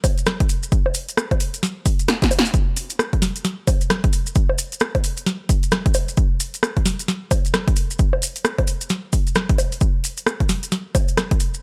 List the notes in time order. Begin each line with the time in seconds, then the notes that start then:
0.04 kick, open hi-hat, high bongo, maracas
0.18 closed hi-hat, maracas
0.26 cross-stick, snare, maracas
0.40 kick, closed hi-hat
0.49 open hi-hat, maracas
0.63 maracas
0.72 kick, closed hi-hat, maracas
0.86 high bongo
0.94 open hi-hat, maracas
1.09 closed hi-hat, maracas
1.17 cross-stick, maracas
1.31 kick, closed hi-hat, high bongo
1.40 open hi-hat, maracas
1.54 closed hi-hat, maracas
1.63 snare, closed hi-hat, maracas
1.86 kick, open hi-hat, maracas
1.99 closed hi-hat, maracas
2.08 cross-stick, snare, maracas
2.22 kick, snare, closed hi-hat
2.31 open hi-hat, high bongo, maracas
2.39 snare
2.45 open hi-hat, maracas
2.54 kick, closed hi-hat, maracas
2.76 open hi-hat, maracas
2.90 closed hi-hat, maracas
2.99 cross-stick, maracas
3.13 kick, closed hi-hat
3.22 snare, open hi-hat, maracas
3.36 closed hi-hat, maracas
3.45 snare, closed hi-hat, maracas
3.67 kick, open hi-hat, high bongo, maracas
3.81 closed hi-hat, maracas
3.90 cross-stick, snare, maracas
4.04 kick, closed hi-hat
4.13 open hi-hat, maracas
4.26 maracas
4.35 kick, closed hi-hat, maracas
4.49 high bongo
4.58 open hi-hat, maracas
4.72 closed hi-hat, maracas
4.80 cross-stick, maracas
4.95 kick, closed hi-hat, high bongo
5.04 open hi-hat, maracas
5.17 closed hi-hat, maracas
5.26 snare, closed hi-hat, maracas
5.49 kick, open hi-hat, maracas
5.63 closed hi-hat, maracas
5.71 cross-stick, snare, maracas
5.86 kick, closed hi-hat
5.94 open hi-hat, high bongo, maracas
6.08 open hi-hat, maracas
6.17 kick, closed hi-hat, maracas
6.40 open hi-hat, maracas
6.54 closed hi-hat, maracas
6.63 cross-stick, maracas
6.77 kick, closed hi-hat
6.86 snare, open hi-hat, maracas
6.99 closed hi-hat, maracas
7.08 snare, closed hi-hat, maracas
7.31 kick, open hi-hat, high bongo, maracas
7.45 closed hi-hat, maracas
7.54 cross-stick, snare, maracas
7.68 kick, closed hi-hat
7.76 open hi-hat, maracas
7.91 maracas
7.99 kick, closed hi-hat, maracas
8.13 high bongo
8.22 open hi-hat, maracas
8.36 closed hi-hat, maracas
8.45 cross-stick, maracas
8.58 kick, closed hi-hat, high bongo
8.67 open hi-hat, maracas
8.81 closed hi-hat, maracas
8.89 snare, closed hi-hat, maracas
9.13 kick, open hi-hat, maracas
9.27 closed hi-hat, maracas
9.35 cross-stick, snare, maracas
9.49 kick, closed hi-hat
9.58 open hi-hat, high bongo, maracas
9.72 open hi-hat, maracas
9.81 kick, closed hi-hat, maracas
10.04 open hi-hat, maracas
10.17 closed hi-hat, maracas
10.27 cross-stick, maracas
10.40 kick, closed hi-hat
10.49 snare, open hi-hat, maracas
10.63 closed hi-hat, maracas
10.72 snare, closed hi-hat, maracas
10.95 kick, open hi-hat, high bongo, maracas
11.08 closed hi-hat, maracas
11.17 cross-stick, snare, maracas
11.31 kick, closed hi-hat
11.40 open hi-hat, maracas
11.54 maracas